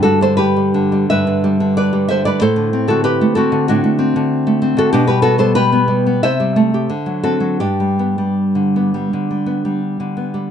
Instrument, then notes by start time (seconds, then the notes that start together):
nylon-string guitar
Already playing: G2 D3
0.03 G3 F#4 A4
0.21 D3 A4 C5
0.37 G4 B4
0.56 G3
0.74 D3
0.92 G3
1.10 G2 B4 E5
1.27 D3
1.44 G3
1.60 D3
1.77 B4 D5
1.93 G3
2.08 D3 C5 E5
2.25 G3 B4 D5
2.41 A2 A4 C5
2.56 D3
2.73 C4
2.88 D3 F#4 A4
3.04 G4 B4
3.21 A3
3.35 C4 F#4 A4
3.52 D3
3.68 A2 D4 F#4
3.84 A3
3.99 C4
4.16 D3
4.47 A3
4.62 C4
4.77 D3 F#4 A4
4.93 B2 D4 G4
5.07 G3 G4 B4
5.22 B3 F#4 A4
5.38 G3 A4 C5
5.55 G4 B4
5.72 B3
5.88 G3
6.06 B3
6.23 C3 C5 E5
6.40 G3
6.56 A3
6.74 G4
6.90 D3
7.06 F#3
7.23 C4 F#4 A4
7.40 F#3
7.60 G2 D4 G4
7.80 G3
7.99 B3
8.18 G3
8.55 D3
8.76 B3
8.94 G3
9.13 D3
9.31 G3
9.46 B3
9.65 G3
10.00 D3
10.17 B3
10.34 G3